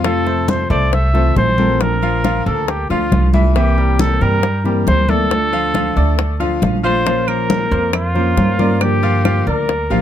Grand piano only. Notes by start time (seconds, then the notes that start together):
0.04 F3 F4 F5
0.26 A3 A4 C5
0.70 A3 A4 C5
1.14 A3 A4 C5
1.58 C4 A4 A#4
2.02 F3 F4 F5
2.24 F3 F4 F5
2.46 A#3 A4 A#4
2.90 F3 F4 F5
3.34 E3 E4 E5
3.56 E3 E4 E5
3.77 G3 G4 A#4
4.22 G3 G4 A#4
4.65 G3 G4 A#4
5.09 A3 A4 D5
5.52 F3 F4 F5
5.74 F3 F4 F5
5.96 A3 A4 D5
6.40 F3 F4 F5
6.83 F3 F4 F5
7.06 F3 F4 F5
7.28 A#3 A#4 C5
7.71 A#3 A#4 C5
8.15 A#3 A#4 C5
8.59 A#3 A#4 D5
9.03 F3 F4 F5
9.24 F3 F4 F5
9.47 A#3 A#4 D5
9.90 F3 F4 F5